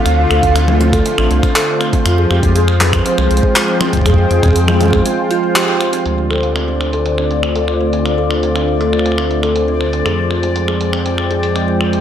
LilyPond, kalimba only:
\new Staff \with { instrumentName = "Kalimba" } { \time 4/4 \key f \lydian \tempo 4 = 120 c'16 r16 a'16 r16 c'16 c'16 r16 a'16 r16 c'16 c'16 r16 a'16 r16 c'16 c'16 | r16 aes'16 r16 c'16 c'16 r16 aes'16 r16 c'16 c'16 r16 aes'16 r16 c'16 c'16 r16 | aes'16 r16 c'16 c'16 r16 aes'16 r16 c'16 c'16 r16 f'16 r16 g'16 g''16 r16 c'16 | c'16 r16 a'16 r16 c'16 c'16 r16 a'16 r16 c'16 c'16 r16 a'16 r16 c'16 c'16 |
r16 a'16 r16 c'16 c'16 r16 a'16 r16 c'16 c'16 r16 a'16 r16 c'16 c'16 r16 | aes'16 r16 c'16 c'16 r16 aes'16 r16 c'16 c'16 r16 aes'16 r16 c'16 c'16 r16 aes'16 | }